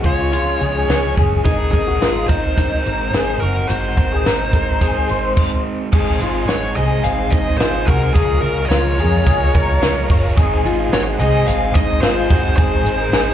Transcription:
0.03 fingered electric bass C#2, overdriven electric guitar G#3 C#4 G#4, clean electric guitar F4, lead electric guitar C#5, kick, closed hi-hat
0.32 overdriven electric guitar C#3 F3 G#3 C#4 G#4, clean electric guitar F4, closed hi-hat
0.60 fingered electric bass C#2, clean electric guitar G#4, closed hi-hat
0.87 fingered electric bass C#2, overdriven electric guitar F3 G#3 C#4 G#4, snare, closed hi-hat
1.15 fingered electric bass F#1, overdriven electric guitar G#3 C#4 G#4, clean electric guitar G#4, kick, closed hi-hat
1.44 fingered electric bass G#1, overdriven electric guitar G#3 C4 D#4 A#4, clean electric guitar D#4, lead electric guitar G#4, kick, closed hi-hat
1.72 fingered electric bass G#1, overdriven electric guitar C4 D#4 A#4, lead electric guitar G#4, kick, closed hi-hat
1.87 clean electric guitar F#4
2.00 fingered electric bass G#1, overdriven electric guitar G#3 C4 D#4 A#4, clean electric guitar F4, snare, closed hi-hat
2.28 fingered electric bass G#1, overdriven electric guitar C4 D#4 A#4, clean electric guitar D#4, lead electric guitar C5, kick, closed hi-hat
2.56 overdriven electric guitar G#3 C4 D#4 A#4, clean electric guitar D#4, kick, closed hi-hat
2.86 fingered electric bass G#1, clean electric guitar A#4, closed hi-hat
3.13 fingered electric bass G#1, overdriven electric guitar G#3 C4 D#4 A#4, clean electric guitar G#4, snare, closed hi-hat
3.40 fingered electric bass F#1, overdriven electric guitar C4 D#4 A#4, clean electric guitar F#4, lead electric guitar A#4, closed hi-hat
3.68 fingered electric bass G#1, overdriven electric guitar G#3 C4 D#4 A#4, clean electric guitar F#4, lead electric guitar C5, closed hi-hat
3.97 fingered electric bass G#1, overdriven electric guitar C4 D#4 A#4, kick, closed hi-hat
4.12 clean electric guitar G#4
4.26 fingered electric bass G#1, overdriven electric guitar G#3 C4 D#4 A#4, clean electric guitar A#4, snare, closed hi-hat
4.53 fingered electric bass G#1, clean electric guitar A#4, kick, closed hi-hat
4.81 overdriven electric guitar G#3 C4 D#4 A#4, clean electric guitar G#4, kick, closed hi-hat
5.09 fingered electric bass G#1, clean electric guitar C5, closed hi-hat
5.37 kick, crash
5.91 fingered electric bass G#1, overdriven electric guitar G#2 D#3 G#3 C4 D#4 G#4, transistor combo organ D#4 G#4 C5, clean electric guitar G#4, kick, crash
6.20 fingered electric bass G#1, overdriven electric guitar G#3 C4 D#4 G#4, clean electric guitar F4, closed hi-hat
6.48 fingered electric bass G#1, overdriven electric guitar G#3 C4 D#4 G#4, clean electric guitar F#4, lead electric guitar C#5, snare, closed hi-hat
6.75 fingered electric bass C2, overdriven electric guitar G#3 C4 D#4 G#4, clean electric guitar G#4, lead electric guitar D#5, closed hi-hat
7.04 fingered electric bass G#1, lead electric guitar F5, closed hi-hat
7.31 fingered electric bass G#1, clean electric guitar D#4, lead electric guitar D#5, kick, closed hi-hat
7.58 fingered electric bass G#1, overdriven electric guitar G#3 C4 D#4 G#4, clean electric guitar F4, lead electric guitar C5, snare, closed hi-hat
7.86 fingered electric bass C2, overdriven electric guitar G#3 C4 D#4 G#4, clean electric guitar F#4, lead electric guitar A#4, kick, open hi-hat
8.14 fingered electric bass C#2, overdriven electric guitar C#3 F3 G#3 F4 A#4, transistor combo organ F4 A#4 C#5, lead electric guitar G#4, clean electric guitar G#4, kick, closed hi-hat
8.41 fingered electric bass C#2, overdriven electric guitar G#3 F4 A#4, lead electric guitar A#4, closed hi-hat
8.58 clean electric guitar F#4
8.65 lead electric guitar D#5
8.69 fingered electric bass C#2, overdriven electric guitar F3 G#3 F4 A#4, clean electric guitar F4, lead electric guitar C#5, snare, closed hi-hat
8.98 fingered electric bass F2, overdriven electric guitar G#3 F4 A#4, clean electric guitar G#4, closed hi-hat
9.27 fingered electric bass C#2, clean electric guitar G#4, kick, closed hi-hat
9.54 fingered electric bass C#2, clean electric guitar A#4, kick, closed hi-hat
9.81 fingered electric bass C#2, overdriven electric guitar F3 G#3 F4 A#4, snare, closed hi-hat
10.08 fingered electric bass F#1, overdriven electric guitar G#3 F4 A#4, clean electric guitar C#5, kick, open hi-hat
10.36 fingered electric bass G#1, overdriven electric guitar G#2 D#3 G#3 C4 D#4 G#4, transistor combo organ D#4 G#4 C5, clean electric guitar G#4, kick, closed hi-hat
10.63 fingered electric bass G#1, overdriven electric guitar G#3 C4 D#4 G#4, clean electric guitar F4, closed hi-hat
10.91 fingered electric bass G#1, overdriven electric guitar G#3 C4 D#4 G#4, clean electric guitar F#4, lead electric guitar C#5, snare, closed hi-hat
11.18 fingered electric bass C2, overdriven electric guitar G#3 C4 D#4 G#4, clean electric guitar G#4, lead electric guitar D#5, closed hi-hat
11.47 fingered electric bass G#1, lead electric guitar F5, closed hi-hat
11.74 fingered electric bass G#1, clean electric guitar D#4, lead electric guitar D#5, kick, closed hi-hat
12.01 fingered electric bass G#1, overdriven electric guitar G#3 C4 D#4 G#4, clean electric guitar F4, lead electric guitar C5, snare, closed hi-hat
12.28 fingered electric bass F#1, overdriven electric guitar G#3 C4 D#4 G#4, clean electric guitar F#4, kick, open hi-hat
12.56 fingered electric bass G#1, overdriven electric guitar G#2 D#3 G#3 C4 D#4 G#4, clean electric guitar G#4, lead electric guitar C5, kick, closed hi-hat
12.84 fingered electric bass G#1, overdriven electric guitar G#3 C4 D#4 G#4, closed hi-hat
13.00 clean electric guitar A#4
13.12 fingered electric bass G#1, overdriven electric guitar G#3 C4 D#4 G#4, clean electric guitar G#4, snare, closed hi-hat

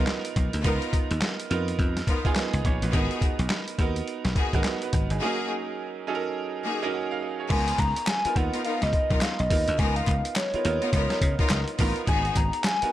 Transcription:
Already playing: grand piano B3 D#4 F4 A#4
0.07 snare, clap, closed hi-hat
0.25 closed hi-hat
0.36 slap bass B1, kick, closed hi-hat
0.53 slap bass D2, closed hi-hat
0.64 slap bass C#2, string section B3 D#4 F4 A#4, grand piano B3 D#4 F4 A#4, kick, closed hi-hat
0.82 closed hi-hat
0.93 kick, closed hi-hat
1.11 slap bass D#2, closed hi-hat
1.21 snare, clap, closed hi-hat
1.40 closed hi-hat
1.50 slap bass F2, grand piano B3 D#4 F4 A#4, closed hi-hat
1.68 closed hi-hat
1.79 slap bass F2, kick, closed hi-hat
1.97 snare, closed hi-hat
2.07 string section B3 D#4 F4 A#4, kick, closed hi-hat
2.25 grand piano B3 D#4 F4 G#4, kick, closed hi-hat
2.35 grand piano A#4 D#5, snare, clap, closed hi-hat
2.53 slap bass C#2, closed hi-hat
2.65 slap bass A#1, grand piano G#4 C#5, kick, closed hi-hat
2.82 slap bass A1, grand piano F4 B4, closed hi-hat
2.93 slap bass G#1, string section B3 D#4 F#4 G#4, grand piano B3 D#4 F#4 A#4, kick, closed hi-hat
3.11 closed hi-hat
3.21 kick, closed hi-hat
3.39 slap bass B1, closed hi-hat
3.49 snare, clap, closed hi-hat
3.68 closed hi-hat
3.79 slap bass D#2, grand piano B3 D#4 F#4 A#4, kick, closed hi-hat
3.96 closed hi-hat
4.08 closed hi-hat
4.25 slap bass B1, snare, closed hi-hat
4.36 string section B3 D#4 F#4 G#4, kick, closed hi-hat
4.53 slap bass G#1, grand piano B3 D#4 F#4 A#4, kick, closed hi-hat
4.64 grand piano A#4 D#5, snare, clap, closed hi-hat
4.82 grand piano F#4 B4, closed hi-hat
4.93 slap bass G#1, kick, closed hi-hat
5.10 slap bass G1, grand piano D#4 G#4, closed hi-hat
5.21 grand piano F#3 C#4 D#4 G#4 A#4, string section A#3 D#4 F#4 G#4
6.07 grand piano F#3 C#4 D#4 G#4 A4
6.15 grand piano A#4
6.64 string section A#3 D#4 F#4 G#4
6.82 grand piano F#3 C#4 D#4 G#4 A#4
6.94 grand piano C#5 F#5
7.11 grand piano A#4 F5
7.23 grand piano A#4 D#5
7.40 grand piano G#4 C#5
7.50 slap bass C#2, string section B3 D#4 F4 A#4, soft synth lead G#5, kick, closed hi-hat, crash
7.68 closed hi-hat
7.79 slap bass C#2, soft synth lead A#5, kick, clap, closed hi-hat
7.96 closed hi-hat
8.07 soft synth lead G#5, snare, clap, closed hi-hat
8.25 grand piano B3 D#4 F4 A#4, muted slap bass stroke, closed hi-hat
8.36 slap bass D#2, grand piano B3 D#4 F4 A#4, soft synth lead F#5, kick, closed hi-hat
8.53 string section B3 D#4 F4 A#4, closed hi-hat
8.64 string section B3 D#4 F4 A#4, soft synth lead F5, closed hi-hat
8.82 slap bass C#2, soft synth lead D#5, snare, closed hi-hat
8.93 kick, closed hi-hat
9.11 slap bass B1, string section B3 D#4 F4 A#4, kick, closed hi-hat
9.21 soft synth lead F5, snare, clap, closed hi-hat
9.39 slap bass B1, soft synth lead D#5, closed hi-hat
9.50 slap bass D#2, grand piano B3 D#4 F4 A#4, kick, open hi-hat
9.68 slap bass D2, closed hi-hat
9.79 slap bass C#2, string section B3 D#4 F4 A#4, soft synth lead G#5, kick, closed hi-hat
9.96 soft synth lead F5, closed hi-hat
10.07 slap bass C#2, kick, clap, closed hi-hat
10.25 closed hi-hat
10.36 soft synth lead C#5, snare, clap, closed hi-hat
10.54 grand piano B3 D#4 F4 A#4, muted slap bass stroke, closed hi-hat
10.65 slap bass D#2, grand piano B3 D#4 F4 A#4, closed hi-hat
10.82 string section B3 D#4 F4 A#4, closed hi-hat
10.93 slap bass C#2, string section B3 D#4 F4 A#4, kick, closed hi-hat
11.10 snare, closed hi-hat
11.21 slap bass C#3, kick, closed hi-hat
11.39 string section B3 D#4 F4 A#4, kick, closed hi-hat
11.49 slap bass C#2, snare, clap, closed hi-hat
11.68 closed hi-hat
11.79 slap bass A1, string section B3 D#4 F4 A#4, grand piano B3 D#4 F4 A#4, kick, open hi-hat
11.96 closed hi-hat
12.07 slap bass G#1, string section B3 D#4 F#4 G#4, soft synth lead G#5, kick, closed hi-hat
12.25 closed hi-hat
12.36 slap bass G#1, soft synth lead A#5, kick, clap, closed hi-hat
12.53 closed hi-hat
12.64 soft synth lead G#5, snare, clap, closed hi-hat
12.82 grand piano B3 D#4 F#4 A#4, muted slap bass stroke, closed hi-hat

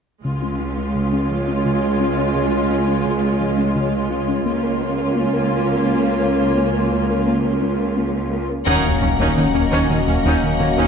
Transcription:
0.25 cello section C#2, synth pluck C#3, viola section G#3 F4, ambient pad G#3 C#4 F4 C#5
0.42 synth pluck C#4
0.60 synth pluck C#4
0.77 synth pluck C#4
0.95 synth pluck C#3
1.13 synth pluck C#4
1.30 synth pluck F3
1.48 synth pluck C#4
1.65 synth pluck C#3
2.00 synth pluck C#4
2.18 synth pluck C#4
2.35 synth pluck C#3
2.53 synth pluck C#4
2.70 synth pluck C#4
2.88 synth pluck C#4
3.05 synth pluck C#3
3.23 synth pluck C#4
3.41 synth pluck F3
3.58 synth pluck C#4
3.76 synth pluck C#3
4.11 synth pluck C#4
4.28 synth pluck C#4
4.45 cello section C#2, viola section A#3 F4, ambient pad A#3 C#4 F4 C#5, synth pluck A#3
4.63 synth pluck A#4
4.81 synth pluck A#4
4.99 synth pluck A#4
5.16 synth pluck A#3
5.33 synth pluck A#4
5.51 synth pluck C#4
5.69 synth pluck A#4
5.86 synth pluck A#3
6.22 synth pluck A#4
6.40 synth pluck A#4
6.57 synth pluck A#3
6.74 synth pluck A#4
6.92 synth pluck A#4
7.10 synth pluck A#4
7.27 synth pluck A#3
7.45 synth pluck A#4
7.62 synth pluck C#4
7.80 synth pluck A#4
7.97 synth pluck A#3
8.32 synth pluck A#4
8.50 synth pluck A#4
8.66 detuned saw bass D#1, cello section D#2, analog synth bass D#2, synth pluck D#3, french horn section F#3 C#4, ambient pad A#3 C#4 F#4 D#5, viola section C#4 D#4, violin section A#4 F#5, impact
8.85 analog synth bass D#2
9.02 analog synth bass D#2, cello section D#2, synth pluck F#3, viola section C#4
9.19 cello section D#2, analog synth bass D#2, synth pluck D#3, viola section C#4 D#4
9.37 cello section D#2, analog synth bass D#3, synth pluck A#3, viola section C#4 D#4
9.55 cello section D#2, analog synth bass D#2, synth pluck C#4, viola section C#4
9.72 cello section D#2, analog synth bass D#2, synth pluck D#3, viola section C#4 D#4
9.89 cello section D#2, analog synth bass D#3, synth pluck A#3, viola section C#4 D#4
10.07 cello section D#2, analog synth bass D#2, synth pluck F#3, viola section C#4
10.24 cello section D#2, analog synth bass D#2, synth pluck D#3, viola section C#4 D#4
10.43 analog synth bass D#3
10.60 cello section D#2, analog synth bass D#3, synth pluck A#3, viola section C#4
10.77 cello section D#2, analog synth bass D#2, synth pluck D#3, viola section C#4 D#4

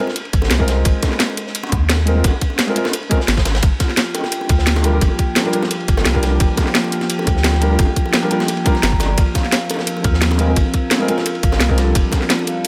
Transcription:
0.00 felt piano A#4
0.07 snare, high bongo
0.16 closed hi-hat, ride
0.25 ride
0.33 sub bass G#1, kick, closed hi-hat, ride
0.42 snare, high bongo
0.51 sub bass C2, snare, closed hi-hat, ride
0.59 felt piano G#3 C4 F4 A#4, kick
0.65 felt piano G#3 C4 F4, snare, closed hi-hat, ride, high bongo
0.71 felt piano A#4
0.85 sub bass G#1, kick, closed hi-hat, ride
1.02 kick, snare, closed hi-hat, ride, high bongo
1.12 snare
1.19 snare, closed hi-hat, ride
1.30 high bongo
1.37 closed hi-hat, ride
1.47 snare
1.55 closed hi-hat, ride
1.63 high bongo
1.72 sub bass D#2, kick, closed hi-hat
1.89 snare, closed hi-hat, ride, high bongo
1.99 snare
2.05 felt piano G#3 C4 F4 A#4, closed hi-hat, ride
2.15 felt piano G#3 C4 F4 A#4
2.24 sub bass G#1, kick, closed hi-hat, ride, high bongo
2.41 kick, closed hi-hat, ride
2.50 high bongo
2.59 snare, closed hi-hat, ride
2.67 felt piano G#3 C4 F4 A#4, ride
2.75 felt piano G#3 C4 F4 A#4, closed hi-hat, ride
2.85 snare, high bongo
2.93 closed hi-hat, ride
3.03 ride
3.09 felt piano G#3 C4 F4 A#4, kick, closed hi-hat, ride, high bongo
3.20 snare
3.28 sub bass G#1, snare, closed hi-hat, ride
3.37 kick, snare, ride
3.45 snare, closed hi-hat, ride, high bongo
3.55 snare, ride
3.63 sub bass G1, ambient pad F3 A#3 G4, kick, closed hi-hat, ride
3.80 vibraphone F4, kick, snare, closed hi-hat, ride, high bongo
3.89 snare
3.97 snare, closed hi-hat, ride
4.15 vibraphone G5, closed hi-hat, ride, high bongo
4.24 snare
4.32 closed hi-hat, ride
4.41 high bongo
4.49 sub bass D2, vibraphone F4, kick, closed hi-hat, ride
4.58 snare
4.66 snare, closed hi-hat, ride
4.76 snare, high bongo
4.83 felt piano G3 D4 F4 A#4, vibraphone F4, closed hi-hat, ride
4.92 felt piano G3 D4 F4 A#4
5.01 sub bass G1, kick, closed hi-hat, ride, high bongo
5.19 vibraphone G5, kick, closed hi-hat, ride
5.36 snare, closed hi-hat, ride, high bongo
5.44 felt piano G3 D4 F4 A#4, ride
5.52 felt piano G3 D4 F4 A#4, vibraphone F4, closed hi-hat, ride
5.63 snare, high bongo
5.71 closed hi-hat, ride
5.80 ride
5.88 sub bass G1, vibraphone F4, kick, closed hi-hat, ride
5.97 snare, high bongo
6.05 sub bass C2, snare, closed hi-hat, ride
6.13 felt piano G3 D4 F4 A#4, kick
6.20 felt piano G3 D4 F4, vibraphone G5, snare, closed hi-hat, ride, high bongo
6.26 felt piano A#4
6.40 sub bass G1, kick, closed hi-hat, ride
6.57 vibraphone F4, kick, snare, closed hi-hat, ride, high bongo
6.67 snare
6.75 snare, closed hi-hat, ride
6.84 high bongo
6.92 vibraphone F4, closed hi-hat, ride
7.01 snare
7.10 closed hi-hat, ride
7.19 high bongo
7.27 sub bass D2, vibraphone G5, kick, closed hi-hat, ride
7.36 snare
7.44 snare, closed hi-hat, ride, high bongo
7.53 snare
7.60 felt piano G3 D4 F4 A#4, vibraphone F4, closed hi-hat, ride
7.70 felt piano G3 D4 F4 A#4
7.79 sub bass G1, kick, closed hi-hat, ride, high bongo
7.96 vibraphone F4, kick, closed hi-hat, ride
8.06 high bongo
8.14 snare, closed hi-hat, ride
8.22 felt piano G3 D4 F4 A#4, ride
8.30 felt piano G3 D4 F4 A#4, vibraphone G5, closed hi-hat, ride
8.40 snare, high bongo
8.48 closed hi-hat, ride
8.57 ride
8.64 felt piano G3 D4 F4 A#4, vibraphone A#5, kick, closed hi-hat, ride, high bongo
8.75 snare
8.83 sub bass G1, snare, closed hi-hat, ride
8.92 kick
9.00 vibraphone D5, snare, closed hi-hat, ride, high bongo
9.18 sub bass G#1, ambient pad C4 A#4, vibraphone F4, kick, closed hi-hat, ride
9.35 vibraphone F5, kick, snare, closed hi-hat, ride, high bongo
9.44 snare
9.52 snare, closed hi-hat, ride
9.70 closed hi-hat, ride, high bongo
9.79 snare
9.87 closed hi-hat, ride
9.97 high bongo
10.04 sub bass D#2, vibraphone F4, kick, closed hi-hat, ride
10.14 snare
10.21 vibraphone F4, snare, closed hi-hat, ride
10.31 snare, high bongo
10.38 felt piano G#3 C4 F4 A#4, vibraphone F5, closed hi-hat, ride
10.47 felt piano G#3 C4 F4 A#4
10.56 sub bass G#1, kick, closed hi-hat, ride, high bongo
10.74 kick, closed hi-hat, ride
10.91 snare, closed hi-hat, ride, high bongo
10.99 felt piano G#3 C4 F4 A#4, ride
11.07 felt piano G#3 C4 F4 A#4, vibraphone F4, closed hi-hat, ride
11.18 snare, high bongo
11.26 vibraphone F4, closed hi-hat, ride
11.35 ride
11.43 sub bass G#1, vibraphone F5, kick, closed hi-hat, ride
11.52 snare, high bongo
11.60 sub bass C2, snare, closed hi-hat, ride
11.68 felt piano G#3 C4 F4 A#4, kick
11.75 felt piano G3 D4 F4, snare, closed hi-hat, ride, high bongo
11.81 felt piano A4
11.95 sub bass F1, ambient pad G3 D4 A4, kick, closed hi-hat, ride
12.12 vibraphone F4, kick, snare, closed hi-hat, ride, high bongo
12.22 snare
12.30 vibraphone F4, snare, closed hi-hat, ride
12.39 high bongo
12.47 vibraphone F5, closed hi-hat, ride
12.64 ride

